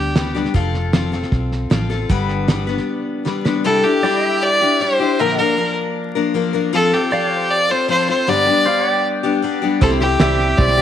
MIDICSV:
0, 0, Header, 1, 7, 480
1, 0, Start_track
1, 0, Key_signature, 0, "major"
1, 0, Tempo, 386349
1, 675, Time_signature, 4, 2, 24, 8
1, 13440, End_track
2, 0, Start_track
2, 0, Title_t, "Pedal steel guitar"
2, 0, Program_c, 0, 26
2, 5008, Note_on_c, 0, 74, 71
2, 5022, Note_on_c, 0, 79, 68
2, 5319, Note_off_c, 0, 74, 0
2, 5319, Note_on_c, 0, 76, 71
2, 6436, Note_off_c, 0, 76, 0
2, 6443, Note_off_c, 0, 79, 0
2, 6457, Note_on_c, 0, 76, 71
2, 6464, Note_on_c, 0, 79, 71
2, 6768, Note_off_c, 0, 76, 0
2, 6768, Note_on_c, 0, 74, 71
2, 6775, Note_off_c, 0, 79, 0
2, 6775, Note_on_c, 0, 77, 71
2, 8353, Note_off_c, 0, 74, 0
2, 8356, Note_off_c, 0, 77, 0
2, 8848, Note_on_c, 0, 74, 74
2, 8860, Note_on_c, 0, 77, 79
2, 9158, Note_off_c, 0, 74, 0
2, 9158, Note_on_c, 0, 72, 74
2, 10270, Note_off_c, 0, 72, 0
2, 10276, Note_off_c, 0, 77, 0
2, 10755, Note_on_c, 0, 72, 73
2, 10769, Note_on_c, 0, 77, 78
2, 11066, Note_off_c, 0, 72, 0
2, 11066, Note_on_c, 0, 74, 73
2, 11080, Note_off_c, 0, 77, 0
2, 11080, Note_on_c, 0, 79, 78
2, 12179, Note_off_c, 0, 74, 0
2, 12186, Note_off_c, 0, 79, 0
2, 12684, Note_on_c, 0, 76, 69
2, 12697, Note_on_c, 0, 79, 72
2, 13440, Note_off_c, 0, 76, 0
2, 13440, Note_off_c, 0, 79, 0
2, 13440, End_track
3, 0, Start_track
3, 0, Title_t, "Fiddle"
3, 0, Program_c, 1, 110
3, 0, Note_on_c, 1, 67, 77
3, 380, Note_off_c, 1, 67, 0
3, 4533, Note_on_c, 1, 69, 103
3, 4773, Note_on_c, 1, 67, 97
3, 4792, Note_off_c, 1, 69, 0
3, 5508, Note_on_c, 1, 74, 116
3, 5526, Note_off_c, 1, 67, 0
3, 5976, Note_on_c, 1, 72, 100
3, 5994, Note_off_c, 1, 74, 0
3, 6464, Note_on_c, 1, 70, 108
3, 6483, Note_off_c, 1, 72, 0
3, 6682, Note_off_c, 1, 70, 0
3, 6690, Note_on_c, 1, 70, 83
3, 7137, Note_off_c, 1, 70, 0
3, 8380, Note_on_c, 1, 69, 107
3, 8624, Note_on_c, 1, 67, 93
3, 8643, Note_off_c, 1, 69, 0
3, 9329, Note_on_c, 1, 74, 109
3, 9347, Note_off_c, 1, 67, 0
3, 9579, Note_on_c, 1, 72, 98
3, 9597, Note_off_c, 1, 74, 0
3, 9804, Note_off_c, 1, 72, 0
3, 9811, Note_on_c, 1, 72, 107
3, 10031, Note_off_c, 1, 72, 0
3, 10054, Note_on_c, 1, 72, 94
3, 10296, Note_on_c, 1, 74, 112
3, 10315, Note_off_c, 1, 72, 0
3, 11247, Note_off_c, 1, 74, 0
3, 12197, Note_on_c, 1, 69, 93
3, 12304, Note_off_c, 1, 69, 0
3, 12438, Note_on_c, 1, 67, 92
3, 13145, Note_on_c, 1, 74, 112
3, 13164, Note_off_c, 1, 67, 0
3, 13440, Note_off_c, 1, 74, 0
3, 13440, End_track
4, 0, Start_track
4, 0, Title_t, "Grand piano"
4, 0, Program_c, 2, 0
4, 12180, Note_on_c, 2, 60, 78
4, 12189, Note_on_c, 2, 64, 70
4, 12199, Note_on_c, 2, 67, 66
4, 12208, Note_on_c, 2, 72, 88
4, 12493, Note_off_c, 2, 60, 0
4, 12498, Note_off_c, 2, 64, 0
4, 12503, Note_off_c, 2, 67, 0
4, 12507, Note_off_c, 2, 72, 0
4, 12655, Note_on_c, 2, 60, 72
4, 12665, Note_on_c, 2, 64, 65
4, 12672, Note_on_c, 2, 67, 64
4, 12683, Note_on_c, 2, 74, 81
4, 12970, Note_off_c, 2, 60, 0
4, 12975, Note_off_c, 2, 64, 0
4, 12978, Note_off_c, 2, 67, 0
4, 12984, Note_off_c, 2, 74, 0
4, 13142, Note_on_c, 2, 60, 73
4, 13148, Note_on_c, 2, 64, 71
4, 13156, Note_on_c, 2, 67, 71
4, 13163, Note_on_c, 2, 72, 83
4, 13440, Note_off_c, 2, 60, 0
4, 13440, Note_off_c, 2, 64, 0
4, 13440, Note_off_c, 2, 67, 0
4, 13440, Note_off_c, 2, 72, 0
4, 13440, End_track
5, 0, Start_track
5, 0, Title_t, "Steel-string acoustic guitar"
5, 0, Program_c, 3, 25
5, 0, Note_on_c, 3, 55, 43
5, 0, Note_on_c, 3, 59, 42
5, 0, Note_on_c, 3, 62, 40
5, 0, Note_on_c, 3, 67, 50
5, 172, Note_off_c, 3, 55, 0
5, 181, Note_off_c, 3, 59, 0
5, 187, Note_off_c, 3, 67, 0
5, 187, Note_on_c, 3, 55, 52
5, 188, Note_off_c, 3, 62, 0
5, 196, Note_on_c, 3, 59, 56
5, 203, Note_on_c, 3, 62, 56
5, 213, Note_on_c, 3, 67, 66
5, 413, Note_off_c, 3, 67, 0
5, 426, Note_off_c, 3, 62, 0
5, 428, Note_on_c, 3, 67, 53
5, 431, Note_off_c, 3, 55, 0
5, 435, Note_off_c, 3, 59, 0
5, 441, Note_on_c, 3, 62, 59
5, 449, Note_on_c, 3, 59, 50
5, 455, Note_on_c, 3, 55, 48
5, 664, Note_off_c, 3, 55, 0
5, 669, Note_on_c, 3, 53, 75
5, 670, Note_off_c, 3, 59, 0
5, 672, Note_off_c, 3, 67, 0
5, 675, Note_on_c, 3, 60, 75
5, 679, Note_off_c, 3, 62, 0
5, 685, Note_on_c, 3, 65, 82
5, 689, Note_on_c, 3, 69, 84
5, 1139, Note_off_c, 3, 53, 0
5, 1149, Note_off_c, 3, 60, 0
5, 1154, Note_on_c, 3, 53, 57
5, 1156, Note_off_c, 3, 65, 0
5, 1164, Note_on_c, 3, 60, 63
5, 1165, Note_off_c, 3, 69, 0
5, 1171, Note_on_c, 3, 65, 67
5, 1184, Note_on_c, 3, 69, 61
5, 1375, Note_off_c, 3, 69, 0
5, 1389, Note_off_c, 3, 65, 0
5, 1390, Note_on_c, 3, 69, 53
5, 1397, Note_off_c, 3, 53, 0
5, 1402, Note_off_c, 3, 60, 0
5, 1404, Note_on_c, 3, 65, 50
5, 1417, Note_on_c, 3, 60, 47
5, 2107, Note_off_c, 3, 60, 0
5, 2110, Note_on_c, 3, 53, 60
5, 2117, Note_off_c, 3, 65, 0
5, 2118, Note_off_c, 3, 69, 0
5, 2122, Note_on_c, 3, 60, 66
5, 2132, Note_on_c, 3, 65, 61
5, 2142, Note_on_c, 3, 69, 62
5, 2342, Note_off_c, 3, 69, 0
5, 2357, Note_off_c, 3, 65, 0
5, 2357, Note_on_c, 3, 69, 62
5, 2358, Note_off_c, 3, 53, 0
5, 2363, Note_off_c, 3, 60, 0
5, 2372, Note_on_c, 3, 65, 53
5, 2385, Note_on_c, 3, 60, 46
5, 2599, Note_on_c, 3, 43, 72
5, 2601, Note_off_c, 3, 69, 0
5, 2602, Note_on_c, 3, 50, 79
5, 2606, Note_on_c, 3, 55, 82
5, 2607, Note_off_c, 3, 60, 0
5, 2609, Note_off_c, 3, 65, 0
5, 2612, Note_on_c, 3, 59, 82
5, 2615, Note_on_c, 3, 62, 77
5, 2618, Note_on_c, 3, 71, 88
5, 3062, Note_off_c, 3, 55, 0
5, 3074, Note_off_c, 3, 59, 0
5, 3077, Note_on_c, 3, 55, 62
5, 3083, Note_off_c, 3, 62, 0
5, 3084, Note_off_c, 3, 43, 0
5, 3085, Note_off_c, 3, 50, 0
5, 3089, Note_on_c, 3, 59, 65
5, 3091, Note_off_c, 3, 71, 0
5, 3098, Note_on_c, 3, 62, 63
5, 3106, Note_on_c, 3, 71, 65
5, 3301, Note_off_c, 3, 71, 0
5, 3310, Note_off_c, 3, 62, 0
5, 3316, Note_on_c, 3, 71, 56
5, 3321, Note_off_c, 3, 59, 0
5, 3323, Note_off_c, 3, 55, 0
5, 3325, Note_on_c, 3, 62, 48
5, 3336, Note_on_c, 3, 59, 50
5, 3345, Note_on_c, 3, 55, 40
5, 4022, Note_off_c, 3, 55, 0
5, 4034, Note_off_c, 3, 59, 0
5, 4037, Note_on_c, 3, 55, 56
5, 4044, Note_off_c, 3, 71, 0
5, 4048, Note_off_c, 3, 62, 0
5, 4049, Note_on_c, 3, 59, 59
5, 4061, Note_on_c, 3, 62, 65
5, 4069, Note_on_c, 3, 71, 62
5, 4267, Note_off_c, 3, 71, 0
5, 4279, Note_off_c, 3, 62, 0
5, 4282, Note_on_c, 3, 71, 56
5, 4284, Note_off_c, 3, 55, 0
5, 4290, Note_off_c, 3, 59, 0
5, 4294, Note_on_c, 3, 62, 51
5, 4303, Note_on_c, 3, 59, 51
5, 4314, Note_on_c, 3, 55, 49
5, 4516, Note_off_c, 3, 55, 0
5, 4521, Note_off_c, 3, 62, 0
5, 4526, Note_off_c, 3, 71, 0
5, 4526, Note_on_c, 3, 48, 76
5, 4531, Note_off_c, 3, 59, 0
5, 4531, Note_on_c, 3, 55, 82
5, 4536, Note_on_c, 3, 62, 77
5, 4542, Note_on_c, 3, 64, 77
5, 4546, Note_on_c, 3, 67, 88
5, 4748, Note_off_c, 3, 67, 0
5, 4763, Note_on_c, 3, 67, 56
5, 4764, Note_off_c, 3, 64, 0
5, 4769, Note_off_c, 3, 48, 0
5, 4771, Note_off_c, 3, 55, 0
5, 4774, Note_off_c, 3, 62, 0
5, 4779, Note_on_c, 3, 64, 51
5, 4793, Note_on_c, 3, 62, 46
5, 4997, Note_off_c, 3, 62, 0
5, 4998, Note_on_c, 3, 55, 59
5, 5003, Note_off_c, 3, 64, 0
5, 5007, Note_off_c, 3, 67, 0
5, 5012, Note_on_c, 3, 62, 63
5, 5018, Note_on_c, 3, 64, 67
5, 5026, Note_on_c, 3, 67, 68
5, 5710, Note_off_c, 3, 67, 0
5, 5724, Note_off_c, 3, 64, 0
5, 5724, Note_on_c, 3, 67, 58
5, 5725, Note_off_c, 3, 55, 0
5, 5732, Note_off_c, 3, 62, 0
5, 5739, Note_on_c, 3, 64, 52
5, 5752, Note_on_c, 3, 62, 45
5, 5958, Note_off_c, 3, 62, 0
5, 5963, Note_on_c, 3, 55, 61
5, 5968, Note_off_c, 3, 67, 0
5, 5971, Note_off_c, 3, 64, 0
5, 5973, Note_on_c, 3, 62, 60
5, 5986, Note_on_c, 3, 64, 74
5, 5991, Note_on_c, 3, 67, 67
5, 6193, Note_off_c, 3, 67, 0
5, 6208, Note_off_c, 3, 55, 0
5, 6208, Note_on_c, 3, 67, 62
5, 6211, Note_off_c, 3, 64, 0
5, 6212, Note_off_c, 3, 62, 0
5, 6226, Note_on_c, 3, 64, 56
5, 6240, Note_on_c, 3, 62, 46
5, 6449, Note_on_c, 3, 46, 69
5, 6450, Note_off_c, 3, 67, 0
5, 6454, Note_off_c, 3, 62, 0
5, 6454, Note_on_c, 3, 50, 78
5, 6459, Note_off_c, 3, 64, 0
5, 6459, Note_on_c, 3, 53, 84
5, 6465, Note_on_c, 3, 58, 76
5, 6469, Note_on_c, 3, 62, 86
5, 6471, Note_on_c, 3, 70, 85
5, 6673, Note_off_c, 3, 70, 0
5, 6685, Note_off_c, 3, 62, 0
5, 6688, Note_on_c, 3, 70, 53
5, 6690, Note_off_c, 3, 46, 0
5, 6693, Note_off_c, 3, 50, 0
5, 6695, Note_off_c, 3, 53, 0
5, 6695, Note_off_c, 3, 58, 0
5, 6700, Note_on_c, 3, 62, 55
5, 6710, Note_on_c, 3, 58, 49
5, 6720, Note_on_c, 3, 53, 45
5, 6905, Note_off_c, 3, 53, 0
5, 6915, Note_off_c, 3, 58, 0
5, 6920, Note_on_c, 3, 53, 60
5, 6923, Note_off_c, 3, 62, 0
5, 6929, Note_off_c, 3, 70, 0
5, 6930, Note_on_c, 3, 58, 59
5, 6938, Note_on_c, 3, 62, 64
5, 6947, Note_on_c, 3, 70, 69
5, 7628, Note_off_c, 3, 70, 0
5, 7640, Note_off_c, 3, 62, 0
5, 7642, Note_on_c, 3, 70, 67
5, 7645, Note_off_c, 3, 53, 0
5, 7647, Note_off_c, 3, 58, 0
5, 7654, Note_on_c, 3, 62, 56
5, 7662, Note_on_c, 3, 58, 61
5, 7671, Note_on_c, 3, 53, 54
5, 7863, Note_off_c, 3, 53, 0
5, 7873, Note_off_c, 3, 58, 0
5, 7878, Note_on_c, 3, 53, 65
5, 7883, Note_off_c, 3, 62, 0
5, 7886, Note_off_c, 3, 70, 0
5, 7888, Note_on_c, 3, 58, 77
5, 7898, Note_on_c, 3, 62, 74
5, 7904, Note_on_c, 3, 70, 72
5, 8098, Note_off_c, 3, 70, 0
5, 8110, Note_off_c, 3, 62, 0
5, 8113, Note_on_c, 3, 70, 63
5, 8117, Note_off_c, 3, 58, 0
5, 8124, Note_off_c, 3, 53, 0
5, 8124, Note_on_c, 3, 62, 59
5, 8132, Note_on_c, 3, 58, 62
5, 8142, Note_on_c, 3, 53, 58
5, 8344, Note_off_c, 3, 53, 0
5, 8359, Note_off_c, 3, 58, 0
5, 8359, Note_on_c, 3, 53, 82
5, 8361, Note_off_c, 3, 70, 0
5, 8364, Note_on_c, 3, 60, 81
5, 8367, Note_off_c, 3, 62, 0
5, 8373, Note_on_c, 3, 65, 84
5, 8377, Note_on_c, 3, 69, 85
5, 8580, Note_off_c, 3, 69, 0
5, 8595, Note_on_c, 3, 69, 53
5, 8598, Note_off_c, 3, 65, 0
5, 8603, Note_off_c, 3, 53, 0
5, 8606, Note_off_c, 3, 60, 0
5, 8613, Note_on_c, 3, 65, 47
5, 8626, Note_on_c, 3, 60, 49
5, 8833, Note_off_c, 3, 60, 0
5, 8834, Note_on_c, 3, 53, 59
5, 8841, Note_off_c, 3, 69, 0
5, 8842, Note_off_c, 3, 65, 0
5, 8848, Note_on_c, 3, 60, 67
5, 8857, Note_on_c, 3, 65, 66
5, 8864, Note_on_c, 3, 69, 65
5, 9541, Note_off_c, 3, 69, 0
5, 9555, Note_off_c, 3, 65, 0
5, 9556, Note_on_c, 3, 69, 59
5, 9560, Note_off_c, 3, 53, 0
5, 9566, Note_off_c, 3, 60, 0
5, 9570, Note_on_c, 3, 65, 53
5, 9584, Note_on_c, 3, 60, 52
5, 9789, Note_off_c, 3, 60, 0
5, 9794, Note_on_c, 3, 53, 57
5, 9800, Note_off_c, 3, 65, 0
5, 9800, Note_off_c, 3, 69, 0
5, 9804, Note_on_c, 3, 60, 66
5, 9814, Note_on_c, 3, 65, 70
5, 9821, Note_on_c, 3, 69, 68
5, 10022, Note_off_c, 3, 69, 0
5, 10037, Note_on_c, 3, 69, 54
5, 10038, Note_off_c, 3, 65, 0
5, 10039, Note_off_c, 3, 53, 0
5, 10044, Note_off_c, 3, 60, 0
5, 10053, Note_on_c, 3, 65, 53
5, 10066, Note_on_c, 3, 60, 50
5, 10274, Note_on_c, 3, 43, 84
5, 10279, Note_on_c, 3, 50, 75
5, 10280, Note_off_c, 3, 69, 0
5, 10282, Note_off_c, 3, 60, 0
5, 10282, Note_on_c, 3, 55, 78
5, 10284, Note_off_c, 3, 65, 0
5, 10287, Note_on_c, 3, 59, 77
5, 10289, Note_on_c, 3, 62, 77
5, 10295, Note_on_c, 3, 67, 84
5, 10495, Note_off_c, 3, 67, 0
5, 10509, Note_off_c, 3, 62, 0
5, 10510, Note_on_c, 3, 67, 54
5, 10519, Note_off_c, 3, 43, 0
5, 10520, Note_off_c, 3, 59, 0
5, 10521, Note_off_c, 3, 50, 0
5, 10523, Note_off_c, 3, 55, 0
5, 10524, Note_on_c, 3, 62, 55
5, 10535, Note_on_c, 3, 59, 43
5, 10543, Note_on_c, 3, 55, 47
5, 10740, Note_off_c, 3, 55, 0
5, 10746, Note_off_c, 3, 59, 0
5, 10755, Note_on_c, 3, 55, 62
5, 10756, Note_off_c, 3, 67, 0
5, 10757, Note_off_c, 3, 62, 0
5, 10761, Note_on_c, 3, 59, 59
5, 10772, Note_on_c, 3, 62, 72
5, 10783, Note_on_c, 3, 67, 70
5, 11464, Note_off_c, 3, 62, 0
5, 11465, Note_off_c, 3, 67, 0
5, 11470, Note_on_c, 3, 67, 65
5, 11473, Note_off_c, 3, 59, 0
5, 11478, Note_on_c, 3, 62, 59
5, 11488, Note_on_c, 3, 59, 58
5, 11494, Note_off_c, 3, 55, 0
5, 11499, Note_on_c, 3, 55, 52
5, 11692, Note_off_c, 3, 55, 0
5, 11703, Note_off_c, 3, 59, 0
5, 11707, Note_on_c, 3, 55, 62
5, 11713, Note_off_c, 3, 62, 0
5, 11714, Note_off_c, 3, 67, 0
5, 11718, Note_on_c, 3, 59, 73
5, 11728, Note_on_c, 3, 62, 70
5, 11737, Note_on_c, 3, 67, 71
5, 11933, Note_off_c, 3, 67, 0
5, 11947, Note_on_c, 3, 67, 65
5, 11948, Note_off_c, 3, 62, 0
5, 11952, Note_off_c, 3, 55, 0
5, 11953, Note_off_c, 3, 59, 0
5, 11963, Note_on_c, 3, 62, 58
5, 11968, Note_on_c, 3, 59, 56
5, 11981, Note_on_c, 3, 55, 53
5, 12178, Note_off_c, 3, 55, 0
5, 12189, Note_on_c, 3, 48, 79
5, 12192, Note_off_c, 3, 67, 0
5, 12193, Note_on_c, 3, 55, 81
5, 12194, Note_off_c, 3, 59, 0
5, 12198, Note_off_c, 3, 62, 0
5, 12199, Note_on_c, 3, 60, 78
5, 12202, Note_on_c, 3, 64, 81
5, 12207, Note_on_c, 3, 67, 77
5, 12413, Note_off_c, 3, 67, 0
5, 12428, Note_on_c, 3, 67, 60
5, 12429, Note_off_c, 3, 64, 0
5, 12432, Note_off_c, 3, 48, 0
5, 12434, Note_off_c, 3, 55, 0
5, 12437, Note_off_c, 3, 60, 0
5, 12444, Note_on_c, 3, 64, 51
5, 12457, Note_on_c, 3, 60, 48
5, 12663, Note_off_c, 3, 60, 0
5, 12668, Note_on_c, 3, 55, 66
5, 12671, Note_off_c, 3, 64, 0
5, 12671, Note_off_c, 3, 67, 0
5, 12678, Note_on_c, 3, 60, 64
5, 12686, Note_on_c, 3, 64, 64
5, 12695, Note_on_c, 3, 67, 71
5, 13379, Note_off_c, 3, 67, 0
5, 13384, Note_on_c, 3, 67, 56
5, 13387, Note_off_c, 3, 64, 0
5, 13394, Note_off_c, 3, 60, 0
5, 13402, Note_on_c, 3, 64, 55
5, 13440, Note_off_c, 3, 55, 0
5, 13440, Note_off_c, 3, 64, 0
5, 13440, Note_off_c, 3, 67, 0
5, 13440, End_track
6, 0, Start_track
6, 0, Title_t, "Fingered electric bass"
6, 0, Program_c, 4, 33
6, 0, Note_on_c, 4, 38, 68
6, 566, Note_off_c, 4, 38, 0
6, 677, Note_on_c, 4, 29, 82
6, 1530, Note_off_c, 4, 29, 0
6, 1640, Note_on_c, 4, 35, 69
6, 2050, Note_off_c, 4, 35, 0
6, 2123, Note_on_c, 4, 33, 73
6, 2533, Note_off_c, 4, 33, 0
6, 2605, Note_on_c, 4, 31, 85
6, 3457, Note_off_c, 4, 31, 0
6, 12196, Note_on_c, 4, 36, 99
6, 12620, Note_off_c, 4, 36, 0
6, 12673, Note_on_c, 4, 36, 90
6, 13080, Note_off_c, 4, 36, 0
6, 13151, Note_on_c, 4, 35, 82
6, 13440, Note_off_c, 4, 35, 0
6, 13440, End_track
7, 0, Start_track
7, 0, Title_t, "Drums"
7, 194, Note_on_c, 9, 38, 103
7, 194, Note_on_c, 9, 44, 80
7, 319, Note_off_c, 9, 38, 0
7, 319, Note_off_c, 9, 44, 0
7, 437, Note_on_c, 9, 38, 32
7, 560, Note_off_c, 9, 38, 0
7, 560, Note_on_c, 9, 38, 28
7, 677, Note_on_c, 9, 36, 96
7, 681, Note_off_c, 9, 38, 0
7, 681, Note_on_c, 9, 38, 29
7, 801, Note_off_c, 9, 36, 0
7, 805, Note_off_c, 9, 38, 0
7, 921, Note_on_c, 9, 38, 31
7, 1046, Note_off_c, 9, 38, 0
7, 1160, Note_on_c, 9, 38, 97
7, 1160, Note_on_c, 9, 44, 72
7, 1284, Note_off_c, 9, 38, 0
7, 1284, Note_off_c, 9, 44, 0
7, 1402, Note_on_c, 9, 38, 31
7, 1524, Note_off_c, 9, 38, 0
7, 1524, Note_on_c, 9, 38, 30
7, 1641, Note_off_c, 9, 38, 0
7, 1641, Note_on_c, 9, 36, 96
7, 1641, Note_on_c, 9, 38, 31
7, 1765, Note_off_c, 9, 36, 0
7, 1766, Note_off_c, 9, 38, 0
7, 1887, Note_on_c, 9, 38, 33
7, 2011, Note_off_c, 9, 38, 0
7, 2126, Note_on_c, 9, 38, 100
7, 2126, Note_on_c, 9, 44, 79
7, 2250, Note_off_c, 9, 38, 0
7, 2250, Note_off_c, 9, 44, 0
7, 2366, Note_on_c, 9, 38, 31
7, 2491, Note_off_c, 9, 38, 0
7, 2602, Note_on_c, 9, 38, 31
7, 2604, Note_on_c, 9, 36, 105
7, 2726, Note_off_c, 9, 38, 0
7, 2728, Note_off_c, 9, 36, 0
7, 2842, Note_on_c, 9, 38, 29
7, 2966, Note_off_c, 9, 38, 0
7, 3086, Note_on_c, 9, 38, 97
7, 3086, Note_on_c, 9, 44, 75
7, 3210, Note_off_c, 9, 38, 0
7, 3210, Note_off_c, 9, 44, 0
7, 3330, Note_on_c, 9, 38, 31
7, 3448, Note_off_c, 9, 38, 0
7, 3448, Note_on_c, 9, 38, 29
7, 3573, Note_off_c, 9, 38, 0
7, 4052, Note_on_c, 9, 38, 53
7, 4176, Note_off_c, 9, 38, 0
7, 4292, Note_on_c, 9, 38, 75
7, 4417, Note_off_c, 9, 38, 0
7, 12196, Note_on_c, 9, 36, 114
7, 12196, Note_on_c, 9, 38, 36
7, 12314, Note_off_c, 9, 38, 0
7, 12314, Note_on_c, 9, 38, 34
7, 12320, Note_off_c, 9, 36, 0
7, 12434, Note_off_c, 9, 38, 0
7, 12434, Note_on_c, 9, 38, 37
7, 12559, Note_off_c, 9, 38, 0
7, 12669, Note_on_c, 9, 38, 110
7, 12669, Note_on_c, 9, 44, 91
7, 12793, Note_off_c, 9, 38, 0
7, 12793, Note_off_c, 9, 44, 0
7, 12913, Note_on_c, 9, 38, 35
7, 13037, Note_off_c, 9, 38, 0
7, 13149, Note_on_c, 9, 38, 35
7, 13151, Note_on_c, 9, 36, 111
7, 13272, Note_off_c, 9, 38, 0
7, 13272, Note_on_c, 9, 38, 31
7, 13275, Note_off_c, 9, 36, 0
7, 13393, Note_off_c, 9, 38, 0
7, 13393, Note_on_c, 9, 38, 38
7, 13440, Note_off_c, 9, 38, 0
7, 13440, End_track
0, 0, End_of_file